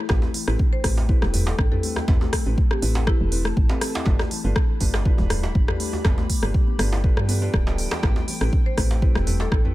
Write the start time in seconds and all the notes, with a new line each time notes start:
0.09 A1 A3 C4 E4 G4 A4 B4 G5, kick, cross-stick, djembe slap, djembe tone
0.22 djembe tone
0.34 E3, open hi-hat
0.48 A1 C4 E4 G4 A4 B4, cross-stick
0.59 D4, kick
0.73 C5
0.84 A1 A3 C4 E4 G4 A4 B4, kick, cross-stick, open hi-hat
0.98 djembe slap
1.09 C4 E4 G4 A4 B4, kick
1.22 E1, cross-stick, djembe tone
1.34 G3 C4 E4 G4 A4 B4, mid tom, open hi-hat
1.47 A4, djembe slap
1.58 A1 D4, kick, cross-stick
1.72 C4 E4 G4 A4 B4, mid tom
1.83 A3, open hi-hat
1.96 cross-stick, djembe tone
2.08 A1 C4 E4 G4 A4 B4 A5, kick, mid tom, djembe slap, djembe tone
2.21 A3, djembe tone
2.33 kick, cross-stick, open hi-hat
2.46 A1 C4 D4 E4 G4 A4 B4
2.58 kick
2.71 C4 G4, cross-stick
2.82 A1 C4 E4 G4 A4 B4, open hi-hat
2.95 E4, djembe slap
3.07 C4 E4 G4 A4 B4, kick, cross-stick
3.20 E1 E3
3.32 C4 E4 G4 A4 B4, open hi-hat
3.45 A3, cross-stick
3.57 A1, kick
3.69 C4 E4 G4 A4 B4, djembe slap
3.81 cross-stick, open hi-hat
3.95 E4, djembe slap
4.05 G1 A3 D4 F4 G4 A4 B4 B5, kick, djembe slap, djembe tone
4.19 cross-stick, djembe tone
4.31 E3, open hi-hat
4.44 G1 D4 F4 G4 A4 B4
4.56 D4, kick, cross-stick
4.81 G1 A3 D4 F4 G4 A4 B4, kick, open hi-hat
4.94 cross-stick, djembe slap
5.05 D4 E4 F4 G4 A4 B4, kick
5.18 D1, djembe tone
5.30 G3 D4 F4 G4 A4 B4, cross-stick, mid tom, open hi-hat
5.43 djembe slap
5.55 G1 D4, kick
5.68 D4 F4 G4 A4 B4, cross-stick, mid tom
5.80 A3, open hi-hat
5.93 djembe tone
6.05 G1 B3 D4 F4 G4 A4 B4 G5, kick, cross-stick, mid tom, djembe slap, djembe tone
6.18 A3, djembe tone
6.30 kick, open hi-hat
6.43 G1 D4 F4 G4 A4 B4, cross-stick
6.54 kick
6.68 B3
6.79 G1 D4 F4 G4 A4 B4, cross-stick, open hi-hat
6.92 E4, djembe slap
7.04 D4 F4 G4 A4 B4, kick
7.17 G2 E3, cross-stick
7.29 B3 D4 F4 G4 A4 B4, open hi-hat
7.42 D4 F4 G4 A4 B4
7.54 D1, kick, cross-stick
7.67 G3 D4 F4 G4 A4 B4, djembe slap
7.78 open hi-hat
7.91 E3, cross-stick, djembe slap
8.03 A1 A3 C4 E4 G4 A4 B4, kick, cross-stick, djembe slap, djembe tone
8.16 djembe tone
8.28 E3, open hi-hat
8.41 A1 C4 E4 G4 A4 B4, cross-stick
8.53 D4, kick
8.66 C5
8.77 A1 A3 C4 E4 G4 A4 B4, kick, cross-stick, open hi-hat
8.91 djembe slap
9.02 C4 E4 G4 A4 B4, kick
9.15 E1, cross-stick, djembe tone
9.27 G3 C4 E4 G4 A4 B4, mid tom, open hi-hat
9.40 A4, djembe slap
9.52 A1 D4, kick, cross-stick
9.65 C4 E4 G4 A4 B4, mid tom